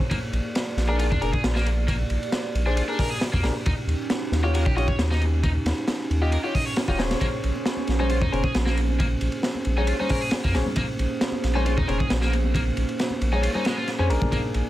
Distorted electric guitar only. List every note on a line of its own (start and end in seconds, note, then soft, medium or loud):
0.10 0.15 A#3 medium
0.89 0.95 D4 medium
0.99 1.04 F4 medium
1.11 1.21 D4 medium
1.22 1.32 A#4 loud
1.33 1.40 G#4 loud
1.55 1.65 A#3 medium
1.88 1.92 A#3 medium
2.66 2.73 D4 medium
2.77 2.81 F4 medium
2.88 2.99 D4 medium
2.99 3.09 A#4 loud
3.11 3.18 G#4 loud
3.33 3.43 A#3 medium
3.66 3.70 D#4 medium
4.44 4.51 G4 medium
4.54 4.59 A#4 medium
4.66 4.76 G4 medium
4.77 4.87 D#5 loud
4.88 4.95 C#5 loud
5.11 5.21 D#4 medium
5.44 5.48 D#4 medium
6.22 6.29 G4 medium
6.33 6.37 A#4 medium
6.44 6.54 G4 medium
6.55 6.65 D#5 loud
6.66 6.73 C#5 loud
6.89 6.99 D#4 medium
7.21 7.26 A#3 medium
8.00 8.07 D#4 medium
8.10 8.15 F4 medium
8.22 8.32 D#4 medium
8.33 8.43 A#4 loud
8.44 8.51 G#4 loud
8.66 8.76 A#3 medium
8.99 9.04 A#3 medium
9.77 9.84 D#4 medium
9.88 9.93 F4 medium
10.00 10.10 D#4 medium
10.10 10.21 A#4 loud
10.22 10.29 G#4 medium
10.44 10.54 A#3 medium
10.77 10.82 A#3 medium
11.55 11.62 D#4 medium
11.66 11.70 F4 medium
11.77 11.88 D#4 medium
11.88 11.98 A#4 loud
11.99 12.06 G#4 loud
12.22 12.32 A#3 medium
12.55 12.59 A#3 medium
13.33 13.40 D#4 medium
13.43 13.48 F4 medium
13.55 13.65 D#4 medium
13.66 13.76 G#3 medium
13.77 13.87 F4 medium
13.99 14.04 C#4 medium
14.32 14.37 A#3 medium